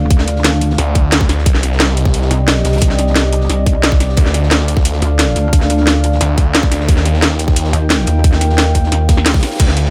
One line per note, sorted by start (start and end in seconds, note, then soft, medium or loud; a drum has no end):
0.00 0.77 D2 loud
0.00 1.43 D4 medium
0.00 1.43 A4 medium
0.00 1.43 D5 medium
0.00 1.43 F5 medium
0.00 sub drop medium
0.10 kick loud
0.10 closed hi-hat medium
0.19 snare medium
0.19 snare soft
0.28 closed hi-hat medium
0.36 snare soft
0.44 snare loud
0.44 closed hi-hat medium
0.44 closed hi-hat loud
0.61 closed hi-hat medium
0.70 snare soft
0.78 1.45 D2 loud
0.78 snare soft
0.78 closed hi-hat medium
0.78 closed hi-hat loud
0.95 kick loud
0.95 closed hi-hat medium
1.12 snare loud
1.12 closed hi-hat medium
1.21 kick loud
1.21 snare soft
1.29 snare soft
1.29 snare medium
1.29 closed hi-hat medium
1.39 snare soft
1.46 2.30 C2 medium
1.46 4.15 C4 medium
1.46 4.15 G4 medium
1.46 6.84 D5 medium
1.46 4.15 D#5 medium
1.46 kick loud
1.46 closed hi-hat medium
1.54 snare medium
1.54 snare soft
1.63 snare soft
1.63 closed hi-hat medium
1.72 snare soft
1.80 snare loud
1.80 closed hi-hat medium
1.97 closed hi-hat medium
2.05 kick loud
2.05 snare soft
2.14 closed hi-hat medium
2.22 snare medium
2.31 2.63 C2 loud
2.31 closed hi-hat medium
2.48 snare loud
2.48 closed hi-hat medium
2.56 snare medium
2.65 3.48 C2 loud
2.65 snare loud
2.65 closed hi-hat medium
2.73 snare medium
2.73 closed hi-hat medium
2.77 snare medium
2.77 closed hi-hat medium
2.81 kick loud
2.81 closed hi-hat medium
2.90 snare medium
2.90 snare soft
2.98 snare soft
2.98 closed hi-hat medium
3.07 snare soft
3.16 snare loud
3.16 closed hi-hat medium
3.33 closed hi-hat medium
3.41 snare soft
3.49 4.16 C2 loud
3.49 snare soft
3.49 closed hi-hat medium
3.66 kick loud
3.66 closed hi-hat medium
3.83 snare loud
3.83 closed hi-hat medium
3.92 kick loud
3.92 snare soft
4.00 snare soft
4.00 closed hi-hat medium
4.09 snare soft
4.17 5.01 D2 loud
4.17 6.86 D4 medium
4.17 6.86 A4 medium
4.17 6.86 F5 medium
4.17 kick loud
4.17 closed hi-hat loud
4.17 closed hi-hat medium
4.26 snare soft
4.26 snare medium
4.34 snare soft
4.34 closed hi-hat medium
4.43 snare soft
4.51 snare loud
4.51 closed hi-hat medium
4.68 closed hi-hat medium
4.77 kick loud
4.77 snare soft
4.85 closed hi-hat medium
4.93 snare soft
5.02 5.35 D2 loud
5.02 closed hi-hat medium
5.19 snare loud
5.19 closed hi-hat medium
5.28 snare soft
5.36 6.19 D2 loud
5.36 closed hi-hat medium
5.53 kick loud
5.53 closed hi-hat medium
5.61 snare soft
5.70 closed hi-hat medium
5.77 snare soft
5.87 snare loud
5.87 closed hi-hat medium
6.04 closed hi-hat medium
6.12 snare soft
6.21 6.87 D2 loud
6.21 snare soft
6.21 closed hi-hat medium
6.38 kick loud
6.38 closed hi-hat medium
6.54 snare loud
6.54 closed hi-hat medium
6.62 kick loud
6.62 snare soft
6.72 snare soft
6.72 closed hi-hat medium
6.80 snare soft
6.88 7.72 D#2 medium
6.88 9.57 D#4 medium
6.88 9.57 A#4 medium
6.88 9.90 F5 medium
6.88 9.57 G5 medium
6.88 kick loud
6.88 closed hi-hat medium
6.88 closed hi-hat loud
6.97 snare medium
6.97 snare soft
7.05 snare soft
7.05 closed hi-hat medium
7.14 snare soft
7.22 snare loud
7.22 closed hi-hat medium
7.39 closed hi-hat medium
7.48 kick loud
7.48 snare soft
7.56 closed hi-hat loud
7.56 closed hi-hat medium
7.64 snare medium
7.73 8.06 D#2 loud
7.73 closed hi-hat medium
7.90 snare loud
7.90 closed hi-hat medium
7.90 closed hi-hat loud
7.99 snare soft
8.07 8.91 D#2 loud
8.07 closed hi-hat medium
8.24 kick loud
8.24 closed hi-hat medium
8.33 snare soft
8.33 snare medium
8.41 snare soft
8.41 closed hi-hat medium
8.50 snare soft
8.58 snare loud
8.58 closed hi-hat loud
8.58 closed hi-hat medium
8.75 kick medium
8.75 closed hi-hat medium
8.84 snare soft
8.92 9.41 D#2 loud
8.92 snare soft
8.92 closed hi-hat loud
9.09 kick loud
9.09 snare loud
9.09 closed hi-hat medium
9.17 snare medium
9.26 snare medium
9.26 snare loud
9.26 closed hi-hat loud
9.26 closed hi-hat medium
9.30 snare medium
9.30 closed hi-hat medium
9.34 kick loud
9.34 snare medium
9.34 closed hi-hat medium
9.39 snare medium
9.39 closed hi-hat medium
9.43 snare medium
9.43 snare soft
9.43 closed hi-hat medium
9.47 snare medium
9.47 closed hi-hat medium
9.51 snare medium
9.51 closed hi-hat medium
9.55 snare medium
9.55 closed hi-hat medium
9.59 9.90 D2 medium
9.59 9.90 D4 medium
9.59 9.90 A4 medium
9.59 9.90 D5 medium
9.59 kick loud
9.59 closed hi-hat medium
9.59 crash medium
9.68 snare soft
9.68 snare medium
9.77 snare soft
9.77 closed hi-hat medium
9.85 snare soft